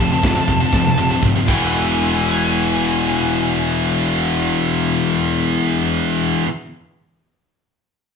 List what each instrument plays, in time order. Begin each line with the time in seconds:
Already playing: lead electric guitar A5
0.00 picked electric bass F1, distorted electric guitar F2 C3
0.11 distorted electric guitar F2 C3
0.22 picked electric bass F1, distorted electric guitar F2 C3, kick, snare, open hi-hat
0.35 distorted electric guitar F2 C3
0.48 picked electric bass F1, distorted electric guitar F2 C3, kick
0.60 distorted electric guitar F2 C3
0.72 picked electric bass F1, distorted electric guitar F2 C3, kick, snare
0.87 snare
0.96 picked electric bass F1, distorted electric guitar F2 C3
1.10 distorted electric guitar F2 C3, high tom
1.22 picked electric bass F1, distorted electric guitar F2 C3, kick, mid tom
1.36 distorted electric guitar F2 C3
1.46 picked electric bass E1, distorted electric guitar E2 B2 E3, lead electric guitar G#5, kick, crash